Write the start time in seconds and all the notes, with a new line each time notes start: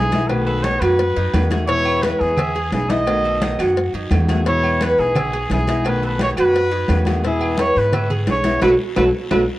Already playing: B1 E3 G#3 B3 E4 G#4
0.12 E3 G#3 B3 D#4 E4, cowbell, high conga, low agogo, short guiro
0.28 B2 D#3 A3 B3 F#4 B4, cowbell, high conga, low agogo, long guiro, claves
0.45 A4 B4, high conga
0.63 D#3 A3 B3 D#4 F#4 C#5, cowbell, high conga, low timbale, low agogo, short guiro
0.80 F#2 F#4 B4, cowbell, high conga, low agogo, short guiro, claves
0.98 muted nylon-string guitar stroke, cowbell, high conga, long guiro
1.16 F#2 D#4, high conga, low agogo
1.33 E2 D#3 A3 B3 F#4, cowbell, high conga, low timbale, low agogo, short guiro, claves
1.51 D#3 A3 B3 F#4 G#4, cowbell, high conga, low agogo, short guiro
1.67 B2 E3 G#3 B3 E4 C#5, cowbell, high conga, long guiro
1.85 high conga, low agogo, claves
2.02 E3 G#3 B3 E4 B4, cowbell, high conga, low timbale, low agogo, short guiro
2.20 E2 G#4, high conga, short guiro
2.37 E5, muted nylon-string guitar stroke, cowbell, high conga, low conga, low agogo, long guiro, claves
2.55 G#4, high conga, low agogo
2.72 B1 E3 G#3 B3 E4 G#4, cowbell, high conga, low timbale, short guiro
2.90 E3 G#3 B3 D#4 E4 D#5, cowbell, high conga, low agogo, short guiro
3.07 B2 D#3 A3 B3 F#4, cowbell, high conga, low agogo, long guiro, claves
3.25 A4, high conga
3.42 D#3 A3 B3 D#4 F#4, cowbell, high conga, low timbale, low agogo, short guiro
3.59 F#2 F#4, cowbell, high conga, low agogo, short guiro, claves
3.76 muted nylon-string guitar stroke, cowbell, high conga, long guiro
3.93 F#2 D#4, high conga, low agogo
4.11 E2 D#3 A3 B3 F#4, cowbell, high conga, low timbale, low agogo, short guiro, claves
4.28 D#3 A3 B3 F#4 G#4, cowbell, high conga, low agogo, short guiro
4.46 B2 E3 G#3 B3 E4 C#5, cowbell, high conga, long guiro
4.63 high conga, low agogo, claves
4.81 E3 G#3 B3 E4 B4, cowbell, high conga, low timbale, low agogo, short guiro
4.98 B1 G#4, high conga, short guiro
5.15 E5, muted nylon-string guitar stroke, cowbell, high conga, low conga, low agogo, long guiro, claves
5.33 G#4, high conga, low agogo
5.50 B1 E3 G#3 B3 E4 G#4, cowbell, high conga, low timbale, short guiro
5.67 E3 G#3 B3 D#4 E4, cowbell, high conga, low agogo, short guiro
5.84 B2 D#3 A3 B3 F#4 B4, cowbell, high conga, low agogo, long guiro, claves
6.02 A4 B4, high conga
6.19 D#3 A3 B3 D#4 F#4 C#5, cowbell, high conga, low timbale, low agogo, short guiro
6.37 F#2 F#4 B4, cowbell, high conga, low agogo, short guiro, claves
6.54 muted nylon-string guitar stroke, cowbell, high conga, long guiro
6.71 D#4, high conga, low agogo
6.88 E2 D#3 A3 B3 F#4, cowbell, high conga, low timbale, low agogo, short guiro, claves
7.05 D#3 A3 B3 F#4 G#4, cowbell, high conga, low agogo, short guiro
7.23 B2 E3 G#3 B3 E4 G#4, cowbell, high conga, long guiro
7.41 high conga, low agogo, claves
7.57 E3 G#3 B3 E4 B4 C#5, cowbell, high conga, low timbale, low agogo, short guiro
7.75 G#2 B4, high conga, short guiro
7.92 E5, muted nylon-string guitar stroke, cowbell, high conga, low conga, low agogo, long guiro, claves
8.10 G#4, high conga, low conga, low agogo
8.27 B1 E3 G#3 B3 E4, cowbell, high conga, low timbale, short guiro
8.31 C#5
8.44 E3 G#3 B3 D#4 E4, cowbell, high conga, low agogo, short guiro
8.62 B1 F#3 A3 B3 F#4 A4 B4, cowbell, high conga, high timbale, long guiro, claves
8.96 B1 F#3 A3 B3 F#4 A4 B4, cowbell, high conga, high timbale, long guiro, claves
9.31 B1 F#3 A3 B3 F#4 A4 B4, cowbell, high conga, high timbale, long guiro, claves